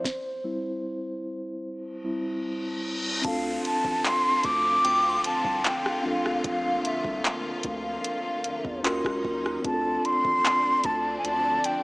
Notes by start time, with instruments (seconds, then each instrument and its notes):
Already playing: tine electric piano C5
0.04 kick, snare
0.44 tine electric piano G3 C4 E4
1.64 reverse cymbal
2.04 tine electric piano G3 C4 E4
3.22 analog synth bass D2, string section D3 F3 A3 C4 F4, tine electric piano C4 D4, flute F5, synth bell A5, kick, closed hi-hat, downlifter
3.26 tine electric piano F4 A4
3.65 flute A5, closed hi-hat
3.85 analog synth bass A1, kick
4.05 flute C6, clap, closed hi-hat
4.25 analog synth bass D2
4.44 analog synth bass D2, flute D6, kick, closed hi-hat
4.85 analog synth bass D2, synth bell G5, closed hi-hat
5.09 synth bell C6
5.24 flute A5, closed hi-hat
5.45 analog synth bass C2, kick
5.64 flute G5, clap, closed hi-hat
5.86 cross-stick
6.02 analog synth bass A#1, string section F3 A#3, tine electric piano C4 D4 F4, flute F5
6.08 tine electric piano A4
6.26 cross-stick
6.44 analog synth bass A#1, flute F5, kick, closed hi-hat
6.85 flute E5, closed hi-hat
7.04 analog synth bass C2, kick
7.25 clap, closed hi-hat
7.45 analog synth bass D2
7.63 analog synth bass D2, flute F5, kick, closed hi-hat
8.04 closed hi-hat
8.44 analog synth bass E2, closed hi-hat
8.65 analog synth bass E2, kick
8.83 analog synth bass D#2, string section D#3 F#3 C#4 D#4, tine electric piano C#4 F4 F#4 A#4, synth bell C6, clap, closed hi-hat
9.05 analog synth bass C#2, kick, cross-stick
9.25 analog synth bass D#2, kick
9.46 cross-stick
9.62 analog synth bass D2, string section D3 F3 A3 C4 D4, tine electric piano C4 D4 F4, flute A5, kick, closed hi-hat
9.68 tine electric piano G#4
9.74 tine electric piano A4
10.05 flute C6, closed hi-hat
10.25 analog synth bass A1, kick
10.46 clap, closed hi-hat
10.65 analog synth bass D2
10.84 analog synth bass D2, flute A5, kick, closed hi-hat
11.18 flute G#5
11.25 analog synth bass D2, flute A5, closed hi-hat
11.64 flute G5, closed hi-hat